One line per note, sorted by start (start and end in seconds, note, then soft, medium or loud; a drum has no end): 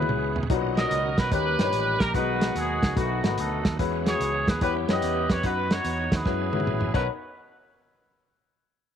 0.00 0.48 E3 medium
0.00 0.28 G#3 medium
0.00 0.48 G#3 medium
0.00 0.48 B3 medium
0.00 0.28 C#4 medium
0.00 0.48 C#4 medium
0.00 0.28 E4 medium
0.00 0.46 E4 medium
0.00 0.28 F#4 medium
0.00 0.49 F#4 medium
0.00 0.47 G#4 medium
0.00 0.30 B4 medium
0.00 0.36 B4 medium
0.00 high tom medium
0.09 0.44 C#2 medium
0.09 mid tom medium
0.36 floor tom medium
0.43 floor tom loud
0.50 0.85 B1 loud
0.50 0.98 A#2 loud
0.50 1.14 B2 medium
0.50 1.31 D#3 medium
0.50 1.31 F#3 medium
0.50 0.98 C#4 medium
0.50 1.31 C#4 medium
0.50 0.98 D#4 medium
0.50 1.31 D#4 medium
0.50 0.98 F#4 medium
0.50 1.31 F#4 medium
0.50 0.56 A#4 medium
0.50 kick loud
0.50 closed hi-hat medium
0.55 1.01 B4 loud
0.76 1.28 F#4 medium
0.76 1.28 A#4 medium
0.76 1.15 D#5 loud
0.76 snare loud
0.76 closed hi-hat medium
0.91 1.14 C#2 medium
0.91 closed hi-hat medium
1.18 1.30 B1 medium
1.18 1.30 B4 loud
1.18 kick loud
1.18 snare loud
1.18 closed hi-hat medium
1.32 1.55 D#2 loud
1.32 1.96 D#3 medium
1.32 2.13 D#3 medium
1.32 2.13 G3 medium
1.32 1.54 A#3 medium
1.32 1.54 C#4 medium
1.32 2.13 C#4 medium
1.32 1.54 D#4 medium
1.32 1.54 G4 medium
1.32 2.10 G4 medium
1.32 2.13 G4 medium
1.32 1.96 B4 loud
1.32 1.54 C#5 medium
1.32 kick loud
1.32 closed hi-hat medium
1.59 1.71 G2 medium
1.59 1.92 A#2 medium
1.59 1.92 C#4 medium
1.59 1.92 D#4 medium
1.59 1.92 G4 medium
1.59 1.62 C5 medium
1.59 snare loud
1.59 closed hi-hat medium
1.64 1.95 C#5 medium
1.73 1.96 A1 loud
1.73 closed hi-hat medium
1.99 2.12 A#1 loud
1.99 2.14 A#4 loud
1.99 kick medium
1.99 snare loud
1.99 closed hi-hat medium
2.14 2.49 B1 medium
2.14 2.78 B2 medium
2.14 2.95 D#3 medium
2.14 2.95 F#3 medium
2.14 2.63 G#3 medium
2.14 2.95 G#3 medium
2.14 2.63 B3 medium
2.14 2.95 B3 medium
2.14 2.63 D#4 medium
2.14 2.55 D#4 medium
2.14 2.63 F#4 medium
2.14 2.93 F#4 medium
2.14 2.95 F#4 medium
2.14 2.63 B4 medium
2.14 2.53 B4 loud
2.14 kick loud
2.14 closed hi-hat medium
2.41 snare loud
2.41 closed hi-hat medium
2.55 2.78 D#2 loud
2.55 2.94 D#4 medium
2.55 2.97 G#4 medium
2.55 closed hi-hat loud
2.83 2.95 C#2 medium
2.83 kick loud
2.83 snare loud
2.83 closed hi-hat medium
2.96 3.20 B1 loud
2.96 3.61 B2 medium
2.96 3.78 D#3 medium
2.96 3.78 F#3 medium
2.96 3.18 A3 medium
2.96 3.78 A3 medium
2.96 3.76 A3 medium
2.96 3.18 B3 medium
2.96 3.78 B3 medium
2.96 3.18 D#4 medium
2.96 3.37 D#4 medium
2.96 3.18 F#4 medium
2.96 3.35 F#4 medium
2.96 3.78 F#4 medium
2.96 3.18 B4 medium
2.96 kick loud
2.96 closed hi-hat medium
3.24 3.36 G#1 medium
3.24 3.57 A3 medium
3.24 3.57 B3 medium
3.24 3.57 D#4 medium
3.24 3.57 F#4 medium
3.24 3.27 A#4 medium
3.24 snare loud
3.24 closed hi-hat medium
3.29 3.60 B4 medium
3.38 3.61 D2 medium
3.38 3.77 D#4 medium
3.38 3.77 F#4 medium
3.38 3.73 A4 medium
3.38 closed hi-hat loud
3.65 3.77 D#2 medium
3.65 kick loud
3.65 snare loud
3.65 closed hi-hat medium
3.79 4.14 E2 medium
3.79 4.43 E3 medium
3.79 4.60 E3 medium
3.79 4.28 G#3 medium
3.79 4.60 G#3 medium
3.79 4.60 B3 medium
3.79 4.28 C#4 medium
3.79 4.60 C#4 medium
3.79 4.28 E4 medium
3.79 4.28 F#4 medium
3.79 4.60 F#4 medium
3.79 4.28 B4 medium
3.79 kick loud
3.79 closed hi-hat medium
4.06 4.58 F#4 medium
4.06 4.58 G#4 medium
4.06 4.45 C#5 medium
4.06 snare loud
4.06 closed hi-hat medium
4.20 4.43 C#2 medium
4.20 closed hi-hat loud
4.47 4.59 D#2 medium
4.47 4.61 B4 medium
4.47 kick loud
4.47 snare loud
4.47 closed hi-hat medium
4.61 4.85 E2 loud
4.61 5.42 E3 medium
4.61 5.26 E3 medium
4.61 5.42 G3 medium
4.61 4.83 B3 medium
4.61 5.42 B3 medium
4.61 4.83 C#4 medium
4.61 5.43 C#4 medium
4.61 4.83 E4 medium
4.61 4.68 F#4 medium
4.61 4.83 G4 medium
4.61 4.88 G4 medium
4.61 4.74 B4 medium
4.61 4.83 C#5 medium
4.61 kick loud
4.61 closed hi-hat medium
4.67 5.45 G4 medium
4.89 5.01 F#2 medium
4.89 5.22 B3 medium
4.89 5.22 C#4 medium
4.89 5.22 E4 medium
4.89 4.92 F#4 medium
4.89 5.40 G4 medium
4.89 5.41 B4 medium
4.89 5.22 C#5 medium
4.89 5.28 D#5 loud
4.89 snare loud
4.89 closed hi-hat medium
4.94 5.24 G4 medium
5.02 5.26 E2 medium
5.02 closed hi-hat medium
5.29 5.42 F2 loud
5.29 5.44 C#5 medium
5.29 kick medium
5.29 snare loud
5.29 closed hi-hat medium
5.43 5.79 F#2 loud
5.43 6.24 B3 medium
5.43 6.24 D#4 medium
5.43 5.93 D#4 medium
5.43 6.23 D#4 medium
5.43 5.50 F4 medium
5.43 5.93 F#4 medium
5.43 5.70 F#4 medium
5.43 5.93 B4 medium
5.43 5.72 B4 loud
5.43 kick medium
5.43 closed hi-hat medium
5.49 6.27 F#4 medium
5.71 6.23 F#4 medium
5.71 6.13 C#5 medium
5.71 snare loud
5.71 closed hi-hat medium
5.85 6.08 E2 medium
5.85 closed hi-hat loud
6.12 6.24 D#2 medium
6.12 6.91 E4 medium
6.12 6.91 G#4 medium
6.12 6.92 B4 medium
6.12 kick loud
6.12 snare loud
6.12 closed hi-hat medium
6.25 6.49 F#2 loud
6.25 6.93 F#3 medium
6.25 6.48 G#3 medium
6.25 6.93 B3 medium
6.25 6.92 C#4 medium
6.25 6.48 C#4 medium
6.25 6.93 E4 medium
6.25 6.48 E4 medium
6.25 6.48 F#4 medium
6.25 6.93 G#4 medium
6.25 6.48 B4 medium
6.25 kick loud
6.25 snare medium
6.53 6.65 G#2 medium
6.53 6.86 G#3 medium
6.53 6.87 C#4 medium
6.53 6.87 E4 medium
6.53 6.87 F#4 medium
6.53 6.87 B4 medium
6.53 high tom medium
6.60 high tom medium
6.67 6.90 A1 medium
6.67 mid tom medium
6.81 mid tom medium
6.93 7.07 B1 medium
6.93 7.08 B1 loud
6.93 7.07 D#3 medium
6.93 7.07 B3 medium
6.93 7.07 C#4 medium
6.93 7.07 D#4 medium
6.93 7.07 A#4 medium
6.93 7.07 A#4 loud
6.93 7.07 B4 medium
6.93 7.07 C#5 medium
6.93 kick loud
6.93 crash medium